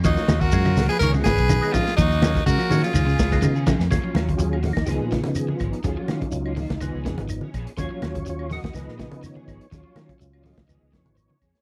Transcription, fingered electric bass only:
\new Staff \with { instrumentName = "Fingered electric bass" } { \clef bass \time 4/4 \key ees \minor \tempo 4 = 124 ees,16 r16 ees,8 ges,8 des,16 r16 des,8 aes,,16 ces,8 r8. | ees,4 des16 r16 ees16 r16 des,8 des,8 des8. f,16 | ees,16 r16 ees,8 ees,8. ees,16 des,16 bes,8 des8 r16 aes,,16 r16 | ees,16 r16 ees16 r16 des,8. des,16 des,16 des,16 f,16 aes,,8 r16 bes,,16 r16 |
ees,16 r16 ees,8 ees,8. ees,16 des,16 bes,8 des8 r16 aes,,16 r16 | ees,16 r16 ees16 r16 des,8. des,16 des,16 des,16 f,16 aes,,8 r16 f,16 r16 | }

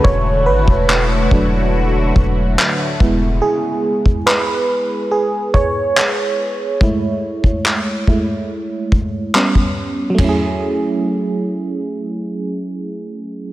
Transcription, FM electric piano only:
<<
  \new Staff \with { instrumentName = "FM electric piano" } { \time 4/4 \key fis \minor \tempo 4 = 71 cis''8 b'4. r2 | gis'4 b'4 gis'8 cis''4.~ | cis''2. r4 | <fis a cis' e' gis'>1 | }
  \new Staff \with { instrumentName = "FM electric piano" } { \time 4/4 \key fis \minor r4. <fis a d'>8 r4. <gis b e'>8~ | <gis b e'>4 r2. | <gis a e'>8 r4 <gis a e'>8 r4 <g b cis'>4 | r1 | }
>>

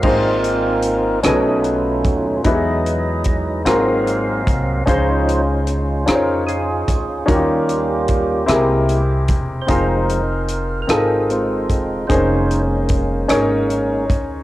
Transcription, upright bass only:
\new Staff \with { instrumentName = "Upright bass" } { \clef bass \time 6/8 \key aes \major \tempo 4. = 50 aes,,4. b,,4 dis,8 | e,4. aes,,4 c,8 | des,4. f,4 d,8 | ees,4. c,4 e,,8 |
f,,4. aes,,4 fes,,8 | f,,4. aes,,4 d,8 | }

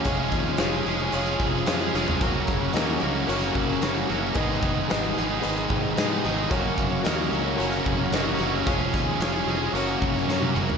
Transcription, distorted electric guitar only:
\new Staff \with { instrumentName = "Distorted electric guitar" } { \time 4/4 \key fis \major \tempo 4 = 111 <eis gis cis' gis'>4 <eis gis cis' gis'>8 <eis gis cis' gis'>8 <eis gis cis' gis'>4 <eis gis cis' gis'>8 <eis gis cis' gis'>8 | <fis, cis fis ais cis' fis'>4 <fis, cis fis ais cis' fis'>8 <fis, cis fis ais cis' fis'>8 <fis, cis fis ais cis' fis'>4 <fis, cis fis ais cis' fis'>8 <fis, cis fis ais cis' fis'>8 | <gis, dis gis b dis' gis'>4 <gis, dis gis b dis' gis'>8 <gis, dis gis b dis' gis'>8 <gis, dis gis b dis' gis'>4 <gis, dis gis b dis' gis'>8 <gis, dis gis b dis' gis'>8 | <fis, cis fis ais cis' fis'>4 <fis, cis fis ais cis' fis'>8 <fis, cis fis ais cis' fis'>8 <fis, cis fis ais cis' fis'>4 <fis, cis fis ais cis' fis'>8 <fis, cis fis ais cis' fis'>8 |
<eis gis cis' gis'>4 <eis gis cis' gis'>8 <eis gis cis' gis'>8 <fis, cis fis ais cis' fis'>4 <fis, cis fis ais cis' fis'>8 <fis, cis fis ais cis' fis'>8 | }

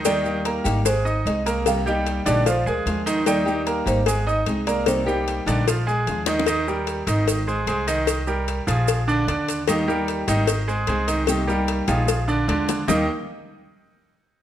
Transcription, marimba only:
\new Staff \with { instrumentName = "Marimba" } { \time 4/4 \key ees \major \tempo 4 = 150 d''4. r8 c''4 ees''4 | f''8 ees''4 d''8 c''8 bes'4 r8 | d''4. c''4 ees''4 d''8 | c''8 bes'2. r8 |
r1 | r1 | r1 | r1 |
r1 | }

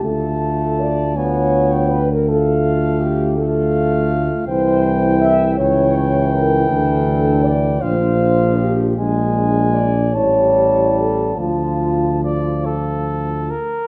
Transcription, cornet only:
\new Staff \with { instrumentName = "Cornet" } { \time 6/8 \key d \minor \tempo 4. = 53 a''4. aes''8. g''8 r16 | f''4. f''4. | g''4. g''4.~ | g''4. f''4. |
aes''4. a''4. | a''4 d''8 a'4 bes'8 | }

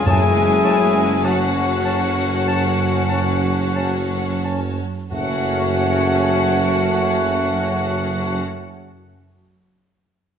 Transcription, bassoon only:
\new Staff \with { instrumentName = "Bassoon" } { \time 4/4 \key fis \minor \tempo 4 = 46 cis'8 cis'8 cis'8 cis'8 cis'8 cis'8 cis'8 cis'8 | a1 | }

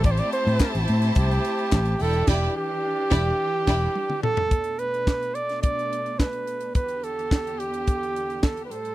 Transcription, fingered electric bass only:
\new Staff \with { instrumentName = "Fingered electric bass" } { \clef bass \time 4/4 \key e \phrygian \tempo 4 = 107 a,,8 r16 a,16 r16 a,,16 a,8 c,8 r8 a,,8 e,,8 | e,,8 r4 e,,8 r8 e,,8 r4 | r1 | r1 | }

